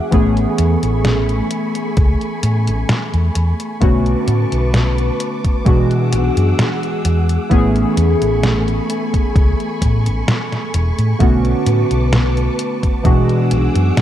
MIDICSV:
0, 0, Header, 1, 5, 480
1, 0, Start_track
1, 0, Key_signature, 3, "major"
1, 0, Tempo, 923077
1, 65, Time_signature, 4, 2, 24, 8
1, 7288, End_track
2, 0, Start_track
2, 0, Title_t, "String machine"
2, 0, Program_c, 0, 50
2, 0, Note_on_c, 0, 68, 78
2, 0, Note_on_c, 0, 76, 69
2, 0, Note_on_c, 0, 78, 70
2, 55, Note_off_c, 0, 68, 0
2, 55, Note_off_c, 0, 76, 0
2, 55, Note_off_c, 0, 78, 0
2, 64, Note_on_c, 0, 80, 73
2, 65, Note_on_c, 0, 57, 80
2, 65, Note_on_c, 0, 83, 71
2, 65, Note_on_c, 0, 85, 82
2, 1965, Note_off_c, 0, 80, 0
2, 1966, Note_off_c, 0, 57, 0
2, 1966, Note_off_c, 0, 83, 0
2, 1966, Note_off_c, 0, 85, 0
2, 1984, Note_on_c, 0, 81, 71
2, 1984, Note_on_c, 0, 86, 88
2, 1985, Note_on_c, 0, 71, 78
2, 1985, Note_on_c, 0, 85, 73
2, 2935, Note_off_c, 0, 71, 0
2, 2935, Note_off_c, 0, 81, 0
2, 2935, Note_off_c, 0, 85, 0
2, 2946, Note_on_c, 0, 68, 76
2, 2946, Note_on_c, 0, 88, 84
2, 2947, Note_on_c, 0, 78, 68
2, 3885, Note_off_c, 0, 86, 0
2, 3896, Note_off_c, 0, 68, 0
2, 3896, Note_off_c, 0, 78, 0
2, 3896, Note_off_c, 0, 88, 0
2, 3904, Note_on_c, 0, 57, 75
2, 3904, Note_on_c, 0, 80, 72
2, 3904, Note_on_c, 0, 85, 86
2, 3905, Note_on_c, 0, 83, 73
2, 5805, Note_off_c, 0, 57, 0
2, 5805, Note_off_c, 0, 80, 0
2, 5806, Note_off_c, 0, 83, 0
2, 5826, Note_on_c, 0, 71, 77
2, 5826, Note_on_c, 0, 81, 72
2, 5826, Note_on_c, 0, 86, 85
2, 6764, Note_off_c, 0, 85, 0
2, 6776, Note_off_c, 0, 71, 0
2, 6776, Note_off_c, 0, 81, 0
2, 6776, Note_off_c, 0, 86, 0
2, 6784, Note_on_c, 0, 78, 72
2, 6785, Note_on_c, 0, 68, 76
2, 6785, Note_on_c, 0, 86, 72
2, 6785, Note_on_c, 0, 88, 85
2, 7288, Note_off_c, 0, 68, 0
2, 7288, Note_off_c, 0, 78, 0
2, 7288, Note_off_c, 0, 86, 0
2, 7288, Note_off_c, 0, 88, 0
2, 7288, End_track
3, 0, Start_track
3, 0, Title_t, "Synth keys"
3, 0, Program_c, 1, 88
3, 0, Control_c, 1, 64, 127
3, 0, Note_on_c, 1, 52, 78
3, 0, Note_on_c, 1, 56, 70
3, 0, Note_on_c, 1, 59, 73
3, 0, Note_on_c, 1, 62, 73
3, 0, Note_on_c, 1, 66, 83
3, 57, Note_off_c, 1, 52, 0
3, 57, Note_on_c, 1, 52, 88
3, 61, Note_on_c, 1, 57, 81
3, 64, Note_off_c, 1, 59, 0
3, 64, Note_on_c, 1, 59, 82
3, 68, Note_on_c, 1, 61, 80
3, 72, Control_c, 1, 64, 0
3, 72, Note_on_c, 1, 68, 99
3, 73, Note_off_c, 1, 62, 0
3, 74, Note_off_c, 1, 56, 0
3, 75, Note_off_c, 1, 66, 0
3, 161, Control_c, 1, 64, 127
3, 1936, Note_off_c, 1, 52, 0
3, 1938, Note_off_c, 1, 57, 0
3, 1939, Note_off_c, 1, 59, 0
3, 1941, Note_off_c, 1, 61, 0
3, 1943, Note_off_c, 1, 68, 0
3, 1977, Note_on_c, 1, 50, 77
3, 1980, Note_on_c, 1, 57, 72
3, 1984, Note_on_c, 1, 59, 72
3, 1988, Note_on_c, 1, 61, 71
3, 1992, Note_on_c, 1, 66, 87
3, 1993, Control_c, 1, 64, 0
3, 2073, Control_c, 1, 64, 127
3, 2896, Note_off_c, 1, 50, 0
3, 2897, Note_off_c, 1, 57, 0
3, 2899, Note_off_c, 1, 59, 0
3, 2901, Note_off_c, 1, 61, 0
3, 2903, Note_off_c, 1, 66, 0
3, 2936, Note_on_c, 1, 52, 80
3, 2941, Note_on_c, 1, 56, 72
3, 2945, Note_on_c, 1, 59, 73
3, 2948, Note_on_c, 1, 62, 70
3, 2951, Control_c, 1, 64, 0
3, 2952, Note_on_c, 1, 66, 85
3, 3029, Control_c, 1, 64, 127
3, 3855, Note_off_c, 1, 52, 0
3, 3858, Note_off_c, 1, 56, 0
3, 3860, Note_off_c, 1, 59, 0
3, 3861, Note_off_c, 1, 62, 0
3, 3863, Note_off_c, 1, 66, 0
3, 3897, Note_on_c, 1, 52, 90
3, 3901, Note_on_c, 1, 57, 80
3, 3904, Note_on_c, 1, 59, 80
3, 3909, Note_on_c, 1, 61, 81
3, 3911, Control_c, 1, 64, 0
3, 3912, Note_on_c, 1, 68, 101
3, 4003, Control_c, 1, 64, 127
3, 5776, Note_off_c, 1, 52, 0
3, 5778, Note_off_c, 1, 57, 0
3, 5779, Note_off_c, 1, 59, 0
3, 5782, Note_off_c, 1, 61, 0
3, 5783, Note_off_c, 1, 68, 0
3, 5817, Note_on_c, 1, 50, 76
3, 5821, Note_on_c, 1, 57, 71
3, 5825, Note_on_c, 1, 59, 72
3, 5829, Note_on_c, 1, 61, 69
3, 5831, Control_c, 1, 64, 0
3, 5833, Note_on_c, 1, 66, 89
3, 5919, Control_c, 1, 64, 127
3, 6736, Note_off_c, 1, 50, 0
3, 6738, Note_off_c, 1, 57, 0
3, 6740, Note_off_c, 1, 59, 0
3, 6742, Note_off_c, 1, 61, 0
3, 6744, Note_off_c, 1, 66, 0
3, 6777, Note_on_c, 1, 52, 79
3, 6781, Note_on_c, 1, 56, 71
3, 6785, Note_on_c, 1, 59, 73
3, 6788, Note_on_c, 1, 62, 73
3, 6793, Control_c, 1, 64, 0
3, 6793, Note_on_c, 1, 66, 86
3, 6892, Control_c, 1, 64, 127
3, 7288, Note_off_c, 1, 52, 0
3, 7288, Note_off_c, 1, 56, 0
3, 7288, Note_off_c, 1, 59, 0
3, 7288, Note_off_c, 1, 62, 0
3, 7288, Note_off_c, 1, 66, 0
3, 7288, End_track
4, 0, Start_track
4, 0, Title_t, "Fingered electric bass"
4, 0, Program_c, 2, 33
4, 65, Note_on_c, 2, 33, 94
4, 230, Note_off_c, 2, 33, 0
4, 305, Note_on_c, 2, 40, 92
4, 390, Note_off_c, 2, 40, 0
4, 431, Note_on_c, 2, 33, 85
4, 725, Note_off_c, 2, 33, 0
4, 1025, Note_on_c, 2, 37, 91
4, 1110, Note_off_c, 2, 37, 0
4, 1265, Note_on_c, 2, 45, 75
4, 1391, Note_on_c, 2, 33, 73
4, 1399, Note_off_c, 2, 45, 0
4, 1467, Note_off_c, 2, 33, 0
4, 1631, Note_on_c, 2, 40, 88
4, 1707, Note_off_c, 2, 40, 0
4, 1744, Note_on_c, 2, 40, 86
4, 1830, Note_off_c, 2, 40, 0
4, 1985, Note_on_c, 2, 35, 95
4, 2150, Note_off_c, 2, 35, 0
4, 2224, Note_on_c, 2, 45, 90
4, 2309, Note_off_c, 2, 45, 0
4, 2351, Note_on_c, 2, 35, 88
4, 2645, Note_off_c, 2, 35, 0
4, 2945, Note_on_c, 2, 47, 87
4, 3184, Note_on_c, 2, 35, 93
4, 3192, Note_off_c, 2, 47, 0
4, 3270, Note_off_c, 2, 35, 0
4, 3311, Note_on_c, 2, 42, 97
4, 3387, Note_off_c, 2, 42, 0
4, 3665, Note_on_c, 2, 40, 86
4, 3830, Note_off_c, 2, 40, 0
4, 3906, Note_on_c, 2, 33, 95
4, 4070, Note_off_c, 2, 33, 0
4, 4145, Note_on_c, 2, 40, 88
4, 4230, Note_off_c, 2, 40, 0
4, 4272, Note_on_c, 2, 33, 83
4, 4565, Note_off_c, 2, 33, 0
4, 4865, Note_on_c, 2, 37, 92
4, 4950, Note_off_c, 2, 37, 0
4, 5106, Note_on_c, 2, 45, 76
4, 5232, Note_on_c, 2, 33, 73
4, 5240, Note_off_c, 2, 45, 0
4, 5308, Note_off_c, 2, 33, 0
4, 5585, Note_on_c, 2, 28, 91
4, 5670, Note_off_c, 2, 28, 0
4, 5712, Note_on_c, 2, 45, 78
4, 5788, Note_off_c, 2, 45, 0
4, 5826, Note_on_c, 2, 35, 92
4, 5990, Note_off_c, 2, 35, 0
4, 6065, Note_on_c, 2, 45, 89
4, 6150, Note_off_c, 2, 45, 0
4, 6192, Note_on_c, 2, 35, 87
4, 6485, Note_off_c, 2, 35, 0
4, 6786, Note_on_c, 2, 47, 83
4, 7026, Note_on_c, 2, 35, 93
4, 7033, Note_off_c, 2, 47, 0
4, 7110, Note_off_c, 2, 35, 0
4, 7152, Note_on_c, 2, 42, 95
4, 7228, Note_off_c, 2, 42, 0
4, 7288, End_track
5, 0, Start_track
5, 0, Title_t, "Drums"
5, 64, Note_on_c, 9, 42, 54
5, 65, Note_on_c, 9, 36, 111
5, 116, Note_off_c, 9, 42, 0
5, 117, Note_off_c, 9, 36, 0
5, 191, Note_on_c, 9, 42, 26
5, 243, Note_off_c, 9, 42, 0
5, 304, Note_on_c, 9, 42, 89
5, 356, Note_off_c, 9, 42, 0
5, 431, Note_on_c, 9, 42, 53
5, 483, Note_off_c, 9, 42, 0
5, 544, Note_on_c, 9, 38, 118
5, 544, Note_on_c, 9, 42, 55
5, 596, Note_off_c, 9, 38, 0
5, 596, Note_off_c, 9, 42, 0
5, 671, Note_on_c, 9, 42, 26
5, 723, Note_off_c, 9, 42, 0
5, 783, Note_on_c, 9, 42, 93
5, 835, Note_off_c, 9, 42, 0
5, 910, Note_on_c, 9, 42, 53
5, 962, Note_off_c, 9, 42, 0
5, 1023, Note_on_c, 9, 42, 53
5, 1025, Note_on_c, 9, 36, 119
5, 1075, Note_off_c, 9, 42, 0
5, 1077, Note_off_c, 9, 36, 0
5, 1151, Note_on_c, 9, 42, 26
5, 1203, Note_off_c, 9, 42, 0
5, 1264, Note_on_c, 9, 42, 93
5, 1316, Note_off_c, 9, 42, 0
5, 1391, Note_on_c, 9, 42, 52
5, 1443, Note_off_c, 9, 42, 0
5, 1503, Note_on_c, 9, 38, 120
5, 1503, Note_on_c, 9, 42, 51
5, 1555, Note_off_c, 9, 38, 0
5, 1555, Note_off_c, 9, 42, 0
5, 1630, Note_on_c, 9, 42, 27
5, 1682, Note_off_c, 9, 42, 0
5, 1744, Note_on_c, 9, 42, 92
5, 1796, Note_off_c, 9, 42, 0
5, 1871, Note_on_c, 9, 42, 52
5, 1923, Note_off_c, 9, 42, 0
5, 1985, Note_on_c, 9, 36, 117
5, 1985, Note_on_c, 9, 42, 52
5, 2037, Note_off_c, 9, 36, 0
5, 2037, Note_off_c, 9, 42, 0
5, 2112, Note_on_c, 9, 42, 25
5, 2164, Note_off_c, 9, 42, 0
5, 2224, Note_on_c, 9, 42, 88
5, 2276, Note_off_c, 9, 42, 0
5, 2352, Note_on_c, 9, 42, 53
5, 2404, Note_off_c, 9, 42, 0
5, 2465, Note_on_c, 9, 38, 122
5, 2465, Note_on_c, 9, 42, 53
5, 2517, Note_off_c, 9, 38, 0
5, 2517, Note_off_c, 9, 42, 0
5, 2592, Note_on_c, 9, 42, 26
5, 2644, Note_off_c, 9, 42, 0
5, 2705, Note_on_c, 9, 42, 90
5, 2757, Note_off_c, 9, 42, 0
5, 2832, Note_on_c, 9, 36, 60
5, 2832, Note_on_c, 9, 42, 52
5, 2884, Note_off_c, 9, 36, 0
5, 2884, Note_off_c, 9, 42, 0
5, 2945, Note_on_c, 9, 36, 121
5, 2945, Note_on_c, 9, 42, 51
5, 2997, Note_off_c, 9, 36, 0
5, 2997, Note_off_c, 9, 42, 0
5, 3072, Note_on_c, 9, 42, 26
5, 3124, Note_off_c, 9, 42, 0
5, 3185, Note_on_c, 9, 42, 94
5, 3237, Note_off_c, 9, 42, 0
5, 3313, Note_on_c, 9, 42, 52
5, 3365, Note_off_c, 9, 42, 0
5, 3426, Note_on_c, 9, 38, 119
5, 3426, Note_on_c, 9, 42, 51
5, 3478, Note_off_c, 9, 38, 0
5, 3478, Note_off_c, 9, 42, 0
5, 3552, Note_on_c, 9, 42, 26
5, 3604, Note_off_c, 9, 42, 0
5, 3665, Note_on_c, 9, 42, 87
5, 3717, Note_off_c, 9, 42, 0
5, 3793, Note_on_c, 9, 42, 50
5, 3845, Note_off_c, 9, 42, 0
5, 3905, Note_on_c, 9, 36, 119
5, 3907, Note_on_c, 9, 42, 52
5, 3957, Note_off_c, 9, 36, 0
5, 3959, Note_off_c, 9, 42, 0
5, 4033, Note_on_c, 9, 42, 25
5, 4085, Note_off_c, 9, 42, 0
5, 4146, Note_on_c, 9, 42, 86
5, 4198, Note_off_c, 9, 42, 0
5, 4273, Note_on_c, 9, 42, 50
5, 4325, Note_off_c, 9, 42, 0
5, 4386, Note_on_c, 9, 38, 121
5, 4386, Note_on_c, 9, 42, 50
5, 4438, Note_off_c, 9, 38, 0
5, 4438, Note_off_c, 9, 42, 0
5, 4513, Note_on_c, 9, 42, 26
5, 4565, Note_off_c, 9, 42, 0
5, 4626, Note_on_c, 9, 42, 86
5, 4678, Note_off_c, 9, 42, 0
5, 4752, Note_on_c, 9, 36, 62
5, 4753, Note_on_c, 9, 42, 50
5, 4804, Note_off_c, 9, 36, 0
5, 4805, Note_off_c, 9, 42, 0
5, 4866, Note_on_c, 9, 36, 122
5, 4867, Note_on_c, 9, 42, 51
5, 4918, Note_off_c, 9, 36, 0
5, 4919, Note_off_c, 9, 42, 0
5, 4992, Note_on_c, 9, 42, 25
5, 5044, Note_off_c, 9, 42, 0
5, 5106, Note_on_c, 9, 36, 61
5, 5106, Note_on_c, 9, 42, 91
5, 5158, Note_off_c, 9, 36, 0
5, 5158, Note_off_c, 9, 42, 0
5, 5232, Note_on_c, 9, 42, 48
5, 5284, Note_off_c, 9, 42, 0
5, 5346, Note_on_c, 9, 38, 117
5, 5346, Note_on_c, 9, 42, 49
5, 5398, Note_off_c, 9, 38, 0
5, 5398, Note_off_c, 9, 42, 0
5, 5473, Note_on_c, 9, 38, 37
5, 5473, Note_on_c, 9, 42, 25
5, 5525, Note_off_c, 9, 38, 0
5, 5525, Note_off_c, 9, 42, 0
5, 5585, Note_on_c, 9, 42, 88
5, 5637, Note_off_c, 9, 42, 0
5, 5712, Note_on_c, 9, 42, 49
5, 5764, Note_off_c, 9, 42, 0
5, 5826, Note_on_c, 9, 36, 116
5, 5826, Note_on_c, 9, 42, 51
5, 5878, Note_off_c, 9, 36, 0
5, 5878, Note_off_c, 9, 42, 0
5, 5952, Note_on_c, 9, 42, 25
5, 6004, Note_off_c, 9, 42, 0
5, 6065, Note_on_c, 9, 42, 85
5, 6117, Note_off_c, 9, 42, 0
5, 6192, Note_on_c, 9, 42, 47
5, 6244, Note_off_c, 9, 42, 0
5, 6306, Note_on_c, 9, 38, 116
5, 6306, Note_on_c, 9, 42, 49
5, 6358, Note_off_c, 9, 38, 0
5, 6358, Note_off_c, 9, 42, 0
5, 6433, Note_on_c, 9, 42, 25
5, 6485, Note_off_c, 9, 42, 0
5, 6546, Note_on_c, 9, 42, 85
5, 6598, Note_off_c, 9, 42, 0
5, 6672, Note_on_c, 9, 36, 57
5, 6673, Note_on_c, 9, 42, 47
5, 6724, Note_off_c, 9, 36, 0
5, 6725, Note_off_c, 9, 42, 0
5, 6786, Note_on_c, 9, 36, 117
5, 6786, Note_on_c, 9, 42, 50
5, 6838, Note_off_c, 9, 36, 0
5, 6838, Note_off_c, 9, 42, 0
5, 6913, Note_on_c, 9, 42, 24
5, 6965, Note_off_c, 9, 42, 0
5, 7026, Note_on_c, 9, 42, 89
5, 7078, Note_off_c, 9, 42, 0
5, 7153, Note_on_c, 9, 42, 50
5, 7205, Note_off_c, 9, 42, 0
5, 7266, Note_on_c, 9, 38, 113
5, 7266, Note_on_c, 9, 42, 47
5, 7288, Note_off_c, 9, 38, 0
5, 7288, Note_off_c, 9, 42, 0
5, 7288, End_track
0, 0, End_of_file